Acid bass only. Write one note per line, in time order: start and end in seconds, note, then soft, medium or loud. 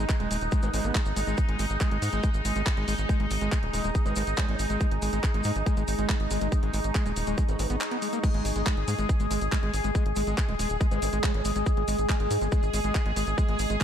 0.20 0.29 G#3 medium
0.31 0.37 G#3 medium
0.52 0.61 G#3 medium
0.63 0.69 G#3 medium
0.74 0.86 G#3 loud
0.84 0.96 B3 medium
0.95 1.01 G#3 medium
1.16 1.20 G#3 loud
1.27 1.36 G#3 medium
1.49 1.58 G#3 medium
1.59 1.65 G#3 medium
1.81 1.90 G#3 medium
1.91 1.98 G#3 medium
2.13 2.22 G#3 medium
2.45 2.54 G#3 medium
2.56 2.62 G#3 medium
2.77 2.86 G#3 medium
2.88 2.94 G#3 medium
3.09 3.18 G#3 medium
3.20 3.26 G#3 medium
3.41 3.51 G#3 medium
3.74 3.83 G#3 medium
3.84 3.90 G#3 medium
4.06 4.15 G#3 medium
4.16 4.23 G#3 medium
4.38 4.47 G#3 medium
4.49 4.55 G#3 medium
4.70 4.79 G#3 medium
5.02 5.11 G#3 medium
5.13 5.19 G#3 medium
5.34 5.43 G#3 medium
5.45 5.51 G#3 medium
5.66 5.76 G#3 medium
5.77 5.83 G#3 medium
5.99 6.08 G#3 medium
6.09 6.15 G#3 medium
6.31 6.40 G#3 medium
6.41 6.48 G#3 medium
6.63 6.72 G#3 medium
6.74 6.80 G#3 medium
6.95 7.04 G#3 medium
7.06 7.12 G#3 medium
7.27 7.36 G#3 medium
7.38 7.44 G#3 medium
7.59 7.63 G#3 medium
7.70 7.76 B3 medium
7.91 7.98 B3 medium
8.02 8.08 G#3 medium
8.13 8.19 A#3 medium
8.24 8.30 G#3 medium
8.34 8.43 G#3 medium
8.56 8.62 G#3 medium
8.66 8.76 G#3 medium
8.88 8.94 G#3 medium
8.99 9.08 G#3 medium
9.20 9.26 G#3 medium
9.31 9.40 G#3 medium
9.52 9.58 G#3 medium
9.63 9.72 G#3 medium
9.84 9.90 G#3 medium
9.95 10.04 G#3 medium
10.16 10.23 G#3 medium
10.27 10.36 G#3 medium
10.49 10.55 G#3 medium
10.59 10.68 G#3 medium
10.81 10.87 G#3 medium
10.91 11.01 G#3 medium
11.13 11.19 G#3 medium
11.24 11.33 G#3 medium
11.45 11.51 G#3 medium
11.56 11.65 G#3 medium
11.77 11.83 G#3 medium
11.88 11.97 G#3 medium
12.09 12.15 G#3 medium
12.20 12.29 G#3 medium
12.41 12.48 G#3 medium
12.52 12.61 G#3 medium
12.74 12.80 G#3 medium
12.84 12.93 G#3 medium
13.06 13.12 G#3 medium
13.16 13.26 G#3 medium
13.38 13.44 G#3 medium
13.49 13.58 G#3 medium
13.70 13.76 G#3 medium
13.81 13.84 G#3 medium